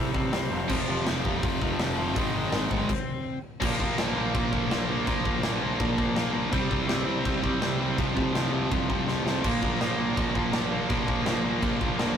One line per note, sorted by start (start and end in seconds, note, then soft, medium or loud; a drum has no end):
0.00 0.12 C3 loud
0.00 0.13 G3 loud
0.00 0.14 C4 loud
0.13 0.27 A1 loud
0.13 0.32 C3 medium
0.13 0.32 G3 medium
0.13 0.33 C4 medium
0.13 kick medium
0.32 0.45 C2 loud
0.32 0.50 C3 loud
0.32 0.50 G3 medium
0.32 3.38 C4 loud
0.32 snare loud
0.32 open hi-hat medium
0.50 0.63 F1 medium
0.50 0.68 F2 medium
0.50 0.68 C3 loud
0.50 0.69 F3 loud
0.69 0.83 F1 loud
0.69 0.86 F2 loud
0.69 0.87 C3 loud
0.69 0.88 F3 loud
0.69 kick loud
0.69 crash loud
0.88 1.00 F1 loud
0.88 1.04 F2 medium
0.88 1.04 C3 loud
0.88 1.05 F3 loud
1.05 1.18 F1 medium
1.05 1.22 F2 medium
1.05 1.23 C3 loud
1.05 1.24 F3 loud
1.05 snare loud
1.05 open hi-hat medium
1.24 1.37 F1 medium
1.24 1.41 F2 medium
1.24 1.42 C3 medium
1.24 1.42 F3 loud
1.24 kick medium
1.43 1.56 F1 loud
1.43 1.60 F2 medium
1.43 1.60 C3 loud
1.43 1.61 F3 loud
1.43 kick loud
1.43 open hi-hat medium
1.61 1.74 F1 loud
1.61 1.78 F2 medium
1.61 1.79 C3 medium
1.61 1.79 F3 medium
1.61 kick medium
1.79 2.16 F1 medium
1.79 1.96 F2 medium
1.79 1.97 C3 medium
1.79 1.98 F3 loud
1.79 snare loud
1.79 open hi-hat medium
1.97 2.14 F2 loud
1.97 2.15 C3 medium
1.97 2.15 F3 medium
2.16 2.29 G#1 loud
2.16 2.32 G#2 loud
2.16 2.33 D#3 loud
2.16 2.33 G#3 loud
2.16 kick loud
2.16 open hi-hat medium
2.33 2.46 G#1 medium
2.33 2.50 G#2 medium
2.33 2.51 D#3 medium
2.33 2.52 G#3 loud
2.51 2.65 G#1 medium
2.51 2.69 G#2 medium
2.51 2.70 D#3 medium
2.51 2.70 G#3 loud
2.51 snare loud
2.51 open hi-hat medium
2.70 2.84 G1 loud
2.70 2.88 G#2 medium
2.70 2.88 D#3 medium
2.70 2.88 G#3 medium
2.70 kick loud
2.89 kick loud
2.89 crash loud
3.60 3.77 A#1 loud
3.60 3.78 A#2 medium
3.60 3.78 F3 loud
3.60 3.79 A#3 loud
3.60 kick loud
3.60 crash loud
3.60 crash medium
3.78 3.95 A#1 loud
3.78 3.97 A#2 medium
3.78 3.97 F3 loud
3.78 3.98 A#3 loud
3.78 kick medium
3.97 4.13 A#1 medium
3.97 4.14 A#2 loud
3.97 4.15 F3 loud
3.97 4.16 A#3 medium
3.97 snare loud
3.97 crash medium
4.15 4.31 A#1 medium
4.15 4.32 A#2 medium
4.15 4.33 F3 medium
4.15 4.33 A#3 medium
4.33 4.66 A#1 medium
4.33 4.51 A#2 loud
4.33 4.52 F3 loud
4.33 4.52 A#3 loud
4.33 kick loud
4.33 crash medium
4.52 4.69 A#2 medium
4.52 4.70 F3 medium
4.52 4.70 A#3 medium
4.52 kick medium
4.69 5.01 A#1 loud
4.69 4.87 A#2 medium
4.69 4.87 F3 loud
4.69 4.88 A#3 medium
4.69 snare loud
4.69 crash medium
4.88 5.05 A#2 medium
4.88 5.06 F3 medium
4.88 5.06 A#3 medium
5.06 5.23 A#1 loud
5.06 5.23 A#2 loud
5.06 5.24 F3 loud
5.06 5.24 A#3 loud
5.06 kick loud
5.06 crash medium
5.24 5.41 A#1 medium
5.24 5.42 A#2 loud
5.24 5.43 F3 loud
5.24 5.43 A#3 loud
5.24 kick loud
5.43 5.59 A#1 medium
5.43 5.60 A#2 medium
5.43 5.61 F3 medium
5.43 5.61 A#3 medium
5.43 snare loud
5.43 crash medium
5.61 5.77 A#1 loud
5.61 5.77 A#2 loud
5.61 5.78 F3 medium
5.61 5.78 A#3 loud
5.79 5.95 A#1 medium
5.79 5.95 A#2 medium
5.79 5.96 F3 loud
5.79 5.96 A#3 loud
5.79 kick loud
5.79 crash medium
5.96 6.13 A#1 loud
5.96 6.12 A#2 medium
5.96 6.13 F3 medium
5.96 6.14 A#3 loud
5.96 kick medium
6.14 6.31 A#1 medium
6.14 6.31 A#2 medium
6.14 6.32 F3 loud
6.14 6.33 A#3 loud
6.14 snare loud
6.14 crash medium
6.32 6.49 A#1 medium
6.32 6.50 A#2 medium
6.32 6.51 F3 medium
6.32 6.51 A#3 loud
6.51 6.68 C2 loud
6.51 6.69 C3 loud
6.51 6.69 G3 loud
6.51 6.70 C4 loud
6.51 kick loud
6.51 crash medium
6.69 6.87 C2 loud
6.69 6.87 C3 medium
6.69 6.87 G3 medium
6.69 6.88 C4 loud
6.69 kick medium
6.87 7.04 C2 medium
6.87 7.05 C3 medium
6.87 7.05 G3 loud
6.87 7.06 C4 loud
6.87 snare loud
6.87 crash medium
7.05 7.22 C2 loud
7.05 7.23 C3 medium
7.05 7.23 G3 medium
7.05 7.24 C4 loud
7.24 7.57 C2 loud
7.24 7.41 C3 loud
7.24 7.41 G3 medium
7.24 7.42 C4 loud
7.24 kick loud
7.24 crash medium
7.42 7.60 C3 medium
7.42 7.60 G3 medium
7.42 7.60 C4 medium
7.42 kick medium
7.61 7.92 C2 loud
7.61 7.78 C3 medium
7.61 7.79 G3 medium
7.61 7.79 C4 loud
7.61 snare loud
7.61 crash medium
7.79 7.97 C3 medium
7.79 7.97 G3 medium
7.79 7.97 C4 medium
7.97 8.14 C2 loud
7.97 8.14 F2 loud
7.97 8.15 C3 loud
7.97 8.17 F3 loud
7.97 kick loud
7.97 crash medium
8.16 8.32 C2 medium
8.16 8.32 F2 medium
8.16 8.33 C3 loud
8.16 8.34 F3 loud
8.16 kick medium
8.33 8.50 C2 medium
8.33 8.51 F2 loud
8.33 8.51 C3 medium
8.33 8.53 F3 medium
8.33 snare loud
8.33 crash medium
8.52 8.68 C2 medium
8.52 8.69 F2 medium
8.52 8.70 C3 medium
8.52 8.71 F3 medium
8.71 8.87 C2 loud
8.71 8.87 F2 loud
8.71 8.88 C3 loud
8.71 8.89 F3 loud
8.71 kick loud
8.71 crash medium
8.88 9.05 C2 loud
8.88 9.05 F2 medium
8.88 9.06 C3 medium
8.88 9.07 F3 medium
8.88 kick medium
9.06 9.23 C2 loud
9.06 9.23 F2 medium
9.06 9.24 C3 medium
9.06 9.25 F3 medium
9.06 snare medium
9.24 9.41 C2 medium
9.24 9.42 F2 medium
9.24 9.42 C3 medium
9.24 9.43 F3 loud
9.24 snare medium
9.44 9.60 A#1 loud
9.44 9.61 A#2 loud
9.44 9.61 F3 loud
9.44 9.62 A#3 loud
9.44 kick loud
9.44 crash loud
9.44 crash medium
9.61 9.78 A#1 medium
9.61 9.79 A#2 medium
9.61 9.80 F3 loud
9.61 9.80 A#3 medium
9.61 kick medium
9.79 9.96 A#1 medium
9.79 9.97 A#2 medium
9.79 9.98 F3 loud
9.79 9.98 A#3 loud
9.79 snare loud
9.79 crash medium
9.97 10.14 A#1 medium
9.97 10.14 A#2 medium
9.97 10.15 F3 loud
9.97 10.15 A#3 loud
10.15 10.48 A#1 loud
10.15 10.32 A#2 loud
10.15 10.33 F3 loud
10.15 10.33 A#3 loud
10.15 kick loud
10.15 crash medium
10.33 10.51 A#2 medium
10.33 10.52 F3 medium
10.33 10.52 A#3 medium
10.33 kick medium
10.52 10.84 A#1 loud
10.52 10.69 A#2 medium
10.52 10.70 F3 medium
10.52 10.70 A#3 medium
10.52 snare loud
10.52 crash medium
10.70 10.87 A#2 medium
10.70 10.87 F3 loud
10.70 10.88 A#3 loud
10.88 11.05 A#1 loud
10.88 11.06 A#2 loud
10.88 11.06 F3 loud
10.88 11.06 A#3 loud
10.88 kick loud
10.88 crash medium
11.07 11.24 A#1 medium
11.07 11.24 A#2 medium
11.07 11.24 F3 medium
11.07 11.25 A#3 loud
11.07 kick loud
11.24 11.41 A#1 medium
11.24 11.42 A#2 medium
11.24 11.42 F3 loud
11.24 11.43 A#3 medium
11.24 snare loud
11.24 crash medium
11.43 11.59 A#1 loud
11.43 11.61 A#2 medium
11.43 11.61 F3 medium
11.43 11.62 A#3 loud
11.62 11.78 A#1 medium
11.62 11.79 A#2 medium
11.62 11.80 F3 loud
11.62 11.80 A#3 loud
11.62 kick loud
11.62 crash medium
11.80 11.96 A#1 loud
11.80 11.97 A#2 medium
11.80 11.97 F3 loud
11.80 11.98 A#3 loud
11.80 kick medium
11.98 12.14 A#1 medium
11.98 12.15 A#2 medium
11.98 12.16 F3 loud
11.98 12.16 A#3 loud
11.98 snare loud
11.98 crash medium